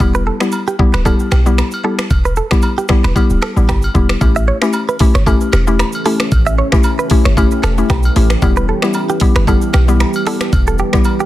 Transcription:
0.00 E1 G3 B3 E4 G4, kick, high agogo, shaker
0.15 B4, shaker
0.27 A4
0.40 G3 B3 E4 G4, finger snap, cross-stick, shaker
0.52 high agogo, low woodblock, shaker
0.67 G4, shaker
0.79 G3 B3 E4 G4, kick
0.94 D1 B4, finger snap, cross-stick, shaker
1.05 G3 B3 E4 G4 A4, kick, high agogo, shaker
1.19 shaker
1.31 B1 G4, finger snap, cross-stick, high agogo, shaker
1.46 G3 B3 E4 G4, shaker
1.58 finger snap, cross-stick, low woodblock, shaker
1.71 high agogo, shaker
1.84 G3 B3 E4 G4 A4
1.99 finger snap, cross-stick, shaker
2.10 E1, kick, high agogo, shaker
2.25 B4, shaker
2.36 A4, shaker
2.51 G3 B3 E4 G4, finger snap, kick, cross-stick, shaker
2.62 high agogo, low woodblock, shaker
2.78 G4, shaker
2.88 G3 B3 E4 G4, finger snap, kick, cross-stick, shaker
3.04 E1 B4, finger snap, cross-stick, shaker
3.15 G3 B3 E4 G4, kick, high agogo, shaker
3.30 D1, shaker
3.42 A4, finger snap, cross-stick, high agogo
3.56 A1 G3 B3 E4 G4, shaker
3.69 G1 G4, finger snap, kick, cross-stick, low woodblock, shaker
3.82 high agogo, shaker
3.94 E1 G3 B3 E4 G4, kick, shaker
4.09 finger snap, cross-stick, shaker
4.21 A1 E3 A3 C#4 E4 G4, kick, high agogo, shaker
4.36 E5, shaker
4.48 C#5
4.62 A3 C#4 E4 G4, finger snap, cross-stick, shaker
4.73 high agogo, low woodblock, shaker
4.89 B4, shaker
4.99 A3 C#4 E4 G4, kick, open hi-hat
5.15 G1 C#5, finger snap, cross-stick, shaker
5.26 A3 C#4 E4 G4 A4, kick, high agogo, shaker
5.41 shaker
5.52 E1 G4, finger snap, cross-stick, high agogo, shaker
5.67 A3 C#4 E4 G4, shaker
5.79 finger snap, cross-stick, low woodblock, shaker
5.92 high agogo, shaker
6.05 A3 C#4 E4 G4 A4, open hi-hat
6.20 finger snap, cross-stick, shaker
6.32 A1, kick, high agogo, shaker
6.46 E5, shaker
6.58 C#5
6.72 A3 C#4 E4 G4, finger snap, kick, cross-stick, shaker
6.83 high agogo, low woodblock, shaker
6.99 B4, shaker
7.10 A3 C#4 E4 G4, kick, open hi-hat
7.25 G1 C#5, finger snap, cross-stick, shaker
7.37 A3 C#4 E4 G4, kick, high agogo, shaker
7.51 shaker
7.63 E1 A4, finger snap, cross-stick, high agogo, shaker
7.78 A3 C#4 E4 G4, shaker
7.90 B1 G4, finger snap, kick, cross-stick, low woodblock, shaker
8.03 high agogo, shaker
8.16 A1 A3 C#4 E4 G4, open hi-hat
8.30 finger snap, cross-stick, shaker
8.42 E1 G3 B3 E4 G4, kick, high agogo, shaker
8.57 B4, shaker
8.69 A4
8.82 G3 B3 E4 G4, finger snap, cross-stick, shaker
8.93 high agogo, low woodblock, shaker
9.09 G4, shaker
9.20 G3 B3 E4 G4, kick, open hi-hat
9.36 G1 B4, finger snap, cross-stick, shaker
9.47 G3 B3 E4 G4 A4, kick, high agogo, shaker
9.62 shaker
9.73 B1 G4, finger snap, cross-stick, high agogo, shaker
9.88 G3 B3 E4 G4, shaker
10.00 finger snap, cross-stick, low woodblock, shaker
10.13 high agogo, shaker
10.27 G3 B3 E4 G4 A4, open hi-hat
10.41 finger snap, cross-stick, shaker
10.53 E1, kick, high agogo, shaker
10.67 A4, shaker
10.78 G4, shaker
10.93 G3 B3 E4 G4, finger snap, kick, cross-stick, shaker
11.04 high agogo, low woodblock, shaker
11.20 G4, shaker

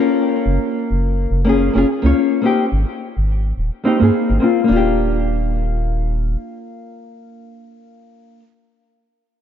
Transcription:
Already playing: A#3 C#4 F4 A#4
0.46 F#1
0.90 F#1
1.31 F#1
1.45 A#3 C#4 F4
1.49 G#4
1.73 F#1 A#3 C#4 F4
1.78 G#4
2.02 C#2 A#3 C#4 F4 C#5
2.42 A#3 C4 D#4
2.46 G4
2.72 G#1
3.17 G#1
3.57 D#1
3.84 A#3 C4 D#4 G4
3.99 G#2 A#3 C4 D#4 G#4
4.30 G#1
4.40 A#3 C4 F4
4.64 A#3
4.68 D#1 D4 F4
4.76 G4

